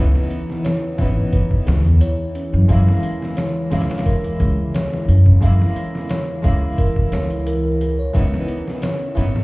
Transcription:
Already playing: upright bass C#2, harpsichord E3 B3, ambient pad E3, music box C#4
0.00 harpsichord D#4
0.15 snare
0.30 closed hi-hat
0.50 snare
0.64 music box C#5, snare, closed hi-hat
0.98 upright bass G#1, harpsichord E3 B3 D#4, music box C#4, kick, closed hi-hat
1.33 music box B4, kick, closed hi-hat
1.51 kick
1.66 upright bass C#2, music box G#4, snare, closed hi-hat
1.85 upright bass E2, closed hi-hat
2.01 music box C#5, closed hi-hat
2.35 music box C#4, closed hi-hat
2.53 upright bass F#2, music box C#4
2.68 upright bass F#2, harpsichord G#3 A#3 E4, music box C#4, kick, closed hi-hat
2.88 snare
3.03 closed hi-hat
3.22 snare
3.37 music box C#5, snare, closed hi-hat
3.71 upright bass C#2, harpsichord G#3 A#3 E4, music box C#4, snare, closed hi-hat
3.80 snare, closed hi-hat
3.90 snare, closed hi-hat
3.98 snare, closed hi-hat
4.06 music box A#4, kick, closed hi-hat
4.24 closed hi-hat
4.40 upright bass C#2, music box G#4, kick, closed hi-hat
4.74 music box C#5, snare, closed hi-hat
4.93 snare
5.08 upright bass F#2, music box C#4, closed hi-hat
5.26 music box C#4, kick
5.41 upright bass F#2, harpsichord G#3 A#3 E4, music box C#4, kick, closed hi-hat
5.62 snare
5.76 closed hi-hat
5.95 snare
6.09 music box C#5, snare, closed hi-hat
6.42 upright bass C#2, harpsichord G#3 A#3 E4, music box C#4, kick, closed hi-hat
6.78 music box A#4, kick, closed hi-hat
6.96 kick
7.12 upright bass C#2, music box C#5, snare, closed hi-hat
7.30 closed hi-hat
7.47 music box A#4, closed hi-hat
7.65 music box A#4
7.81 music box G#4, closed hi-hat
7.99 music box C#5
8.14 upright bass C#2, harpsichord E3 B3 D#4, music box C#4, ambient pad C#4, kick, closed hi-hat
8.34 snare
8.48 closed hi-hat
8.68 snare
8.82 music box C#5, snare, closed hi-hat
9.15 upright bass G#1, harpsichord E3 B3 D#4, music box C#4, closed hi-hat
9.36 snare

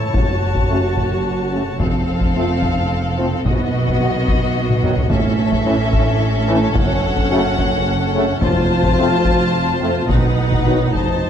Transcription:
Already playing: double bass section A1, cello section A2, viola section E4, violin section C#5 A5
0.14 double bass section F#1, cello section F#2, viola section F#4, taiko
0.55 taiko
0.69 trombone section C#3 A3, french horn section C#4 F#4
0.97 taiko
1.52 trombone section C#3 A3, french horn section C#4 F#4
1.80 double bass section F1, cello section F2, viola section C4, violin section A4 F5, taiko
2.21 taiko
2.35 trombone section F3 A3, french horn section C4 F4
2.63 taiko
3.17 trombone section F3 A3, french horn section C4 F4
3.45 double bass section B1, cello section B2, viola section B3, violin section F#4 D#5, taiko
3.87 taiko
4.00 trombone section D#3 F#3, french horn section B3 F#4
4.28 taiko
4.70 taiko mid
4.83 trombone section D#3 F#3, french horn section B3 F#4, taiko low-mid
4.97 taiko low
5.10 double bass section A1, cello section A2, viola section C#4, violin section A4 E5, taiko
5.52 taiko
5.65 trombone section E3 A3, french horn section C#4 E4
5.93 taiko
6.48 trombone section E3 A3, french horn section C#4 E4
6.76 double bass section F#1, cello section F#2, violin section F#5, taiko
7.17 taiko
7.31 trombone section C#3 A3, french horn section C#4 F#4
7.58 taiko
8.14 trombone section C#3 A3, french horn section C#4 F#4
8.41 double bass section F1, cello section F2, viola section F4, violin section C5 A5, taiko
8.83 taiko
8.98 trombone section F3 A3, french horn section C4 F4
9.25 taiko
9.80 trombone section F3 A3, french horn section C4 F4
10.09 double bass section B1, cello section B2, viola section D#4, violin section B4 F#5, taiko
10.52 taiko
10.65 trombone section D#3 F#3, french horn section B3 F#4
10.94 double bass section F1, cello section F2, violin section C5 A5, taiko

